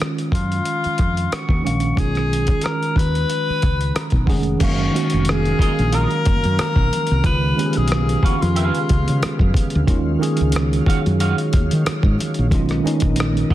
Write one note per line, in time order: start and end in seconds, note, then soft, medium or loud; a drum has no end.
0.00 0.56 D#3 medium
0.00 0.56 G#3 medium
0.00 0.57 C#4 medium
0.00 0.58 F4 medium
0.00 cross-stick medium
0.18 closed hi-hat soft
0.32 0.60 F#2 medium
0.32 1.35 F4 medium
0.32 kick medium
0.32 closed hi-hat medium
0.52 closed hi-hat soft
0.65 closed hi-hat medium
0.84 muted fretless electric bass stroke soft
0.84 closed hi-hat soft
0.98 1.27 F2 medium
0.98 kick medium
0.98 closed hi-hat medium
1.17 closed hi-hat soft
1.32 1.64 F#4 medium
1.32 cross-stick loud
1.32 closed hi-hat medium
1.49 1.62 D#2 medium
1.49 kick medium
1.62 1.94 D#3 medium
1.62 1.95 G#3 medium
1.62 1.95 C#4 medium
1.62 2.00 F#4 medium
1.66 1.92 A#1 medium
1.66 1.96 F5 medium
1.66 closed hi-hat medium
1.80 closed hi-hat soft
1.96 2.52 B1 medium
1.96 3.20 D#3 medium
1.96 3.20 G#3 medium
1.96 3.21 C#4 medium
1.96 3.22 F4 medium
1.96 2.65 G#4 medium
1.96 kick loud
1.96 closed hi-hat medium
2.15 cross-stick soft
2.15 closed hi-hat soft
2.33 closed hi-hat medium
2.47 kick medium
2.47 closed hi-hat soft
2.61 2.99 A#4 medium
2.61 closed hi-hat medium
2.66 cross-stick loud
2.83 closed hi-hat soft
2.96 3.24 D#2 medium
2.96 4.28 B4 loud
2.96 kick medium
2.96 closed hi-hat medium
3.15 closed hi-hat soft
3.30 closed hi-hat medium
3.50 muted fretless electric bass stroke soft
3.62 3.90 C#2 medium
3.62 kick medium
3.62 closed hi-hat medium
3.81 closed hi-hat soft
3.95 4.25 A#5 medium
3.95 cross-stick loud
3.95 closed hi-hat medium
4.10 4.26 B1 medium
4.10 kick medium
4.10 closed hi-hat soft
4.26 4.55 F1 medium
4.26 4.58 D#3 medium
4.26 4.58 G#3 medium
4.26 4.59 C#4 medium
4.26 4.59 G#4 medium
4.26 4.58 F#5 medium
4.26 kick medium
4.26 open hi-hat soft
4.43 closed hi-hat soft
4.59 4.88 F#1 loud
4.59 4.91 D#3 medium
4.59 7.21 F#3 medium
4.59 4.91 G#3 medium
4.59 7.21 A#3 medium
4.59 4.92 C#4 medium
4.59 12.48 F5 medium
4.59 4.92 F5 medium
4.59 kick loud
4.59 closed hi-hat medium
4.59 crash medium
4.59 muted conga soft
4.59 low conga medium
4.64 5.31 F#4 medium
4.92 6.16 D#3 medium
4.92 6.17 G#3 medium
4.92 6.17 C#4 medium
4.92 6.18 F#4 medium
4.92 muted conga soft
4.92 high conga medium
4.96 closed hi-hat medium
5.10 5.52 F1 medium
5.10 closed hi-hat soft
5.25 closed hi-hat medium
5.25 high conga medium
5.29 5.96 G#4 medium
5.29 cross-stick loud
5.45 closed hi-hat soft
5.59 5.71 F4 medium
5.59 5.72 A#4 medium
5.59 5.72 D#5 medium
5.59 muted fretless electric bass stroke soft
5.59 kick medium
5.59 closed hi-hat medium
5.59 muted conga soft
5.59 high conga soft
5.59 low conga medium
5.79 6.05 A#1 medium
5.79 closed hi-hat soft
5.93 6.07 F4 medium
5.93 6.08 A#4 medium
5.93 6.59 A#4 loud
5.93 6.08 D#5 medium
5.93 closed hi-hat medium
5.93 muted conga soft
6.11 closed hi-hat soft
6.25 6.41 F#1 medium
6.25 kick medium
6.25 closed hi-hat medium
6.25 high conga medium
6.44 6.57 F#2 medium
6.44 closed hi-hat soft
6.59 7.21 A#4 loud
6.59 muted fretless electric bass stroke soft
6.59 cross-stick loud
6.59 closed hi-hat medium
6.59 muted conga soft
6.76 6.89 B1 medium
6.76 kick medium
6.92 closed hi-hat medium
6.92 muted conga soft
6.92 low conga medium
7.07 closed hi-hat soft
7.11 7.23 C2 medium
7.23 7.52 C#2 medium
7.23 9.85 C#3 medium
7.23 7.54 D#3 medium
7.23 9.85 G#3 medium
7.23 7.55 G#3 medium
7.23 9.85 B3 medium
7.23 7.56 C#4 medium
7.23 7.56 F4 medium
7.23 7.78 B4 loud
7.23 kick loud
7.23 closed hi-hat medium
7.23 muted conga soft
7.23 low conga medium
7.56 8.80 D#3 medium
7.56 8.81 G#3 medium
7.56 8.81 C#4 medium
7.56 7.65 G4 medium
7.56 closed hi-hat medium
7.56 muted conga soft
7.56 high conga medium
7.66 8.85 G#4 medium
7.73 8.24 G#4 medium
7.73 closed hi-hat soft
7.77 8.16 B1 medium
7.88 closed hi-hat medium
7.88 muted conga soft
7.88 high conga medium
7.92 cross-stick loud
8.09 closed hi-hat soft
8.23 8.43 F#4 medium
8.23 8.34 G#4 medium
8.23 8.35 B4 medium
8.23 8.35 F5 medium
8.23 muted fretless electric bass stroke soft
8.23 kick medium
8.23 closed hi-hat medium
8.23 muted conga soft
8.23 high conga soft
8.23 low conga medium
8.42 8.69 F2 medium
8.42 9.55 F4 medium
8.42 closed hi-hat soft
8.56 8.77 G#4 medium
8.56 8.77 B4 medium
8.56 8.77 F5 medium
8.56 closed hi-hat medium
8.75 closed hi-hat soft
8.89 9.05 C#2 medium
8.89 kick medium
8.89 closed hi-hat medium
8.89 muted conga soft
8.89 high conga medium
9.08 9.21 C#3 medium
9.08 closed hi-hat medium
9.22 muted fretless electric bass stroke soft
9.22 cross-stick loud
9.22 closed hi-hat medium
9.22 muted conga soft
9.39 9.53 F#2 medium
9.39 kick medium
9.54 kick medium
9.54 closed hi-hat medium
9.54 muted conga soft
9.54 low conga medium
9.70 closed hi-hat soft
9.75 9.87 D2 medium
9.87 10.16 D#2 loud
9.87 10.18 D#3 medium
9.87 12.49 D#3 medium
9.87 12.49 F#3 medium
9.87 10.19 G#3 medium
9.87 12.49 C#4 medium
9.87 10.19 C#4 medium
9.87 10.20 F4 medium
9.87 kick loud
9.87 closed hi-hat medium
9.87 low conga medium
10.19 11.44 D#3 medium
10.19 11.44 G#3 medium
10.19 11.45 C#4 medium
10.19 11.45 G#4 loud
10.19 high conga medium
10.23 closed hi-hat medium
10.37 closed hi-hat soft
10.41 10.80 C#2 medium
10.52 closed hi-hat medium
10.52 muted conga soft
10.52 high conga medium
10.56 cross-stick loud
10.73 closed hi-hat soft
10.86 10.98 F#4 medium
10.86 10.99 C#5 medium
10.86 10.99 F5 medium
10.86 muted fretless electric bass stroke soft
10.86 kick medium
10.86 closed hi-hat medium
10.86 muted conga soft
10.86 high conga soft
10.86 low conga medium
11.06 11.33 F#2 medium
11.06 closed hi-hat soft
11.20 11.35 F#4 medium
11.20 11.35 C#5 medium
11.20 11.35 F5 medium
11.20 closed hi-hat medium
11.20 muted conga soft
11.38 closed hi-hat soft
11.53 11.68 D#2 medium
11.53 kick medium
11.53 closed hi-hat medium
11.53 muted conga soft
11.53 high conga medium
11.71 11.84 D#3 medium
11.71 closed hi-hat medium
11.85 muted fretless electric bass stroke soft
11.85 cross-stick loud
11.85 closed hi-hat medium
11.85 muted conga soft
12.03 12.17 G#2 medium
12.03 kick loud
12.19 closed hi-hat medium
12.19 muted conga soft
12.19 low conga medium
12.34 closed hi-hat soft
12.39 12.53 A#1 medium
12.50 12.80 B1 loud
12.50 12.82 D#3 medium
12.50 12.82 G#3 medium
12.50 13.54 A#3 medium
12.50 13.54 B3 medium
12.50 12.83 C#4 medium
12.50 13.54 D#4 medium
12.50 12.84 F4 medium
12.50 kick loud
12.50 closed hi-hat medium
12.50 muted conga soft
12.50 low conga medium
12.69 cross-stick soft
12.69 closed hi-hat soft
12.84 13.54 D#3 medium
12.84 13.54 G#3 medium
12.84 13.54 C#4 medium
12.84 13.54 D#4 medium
12.84 closed hi-hat medium
12.84 muted conga soft
12.84 high conga medium
13.00 13.43 A#1 medium
13.00 kick medium
13.00 closed hi-hat medium
13.16 closed hi-hat medium
13.16 high conga medium
13.20 cross-stick loud
13.37 closed hi-hat soft
13.50 13.54 F#4 medium
13.50 kick medium
13.50 muted conga soft
13.50 high conga soft
13.50 low conga medium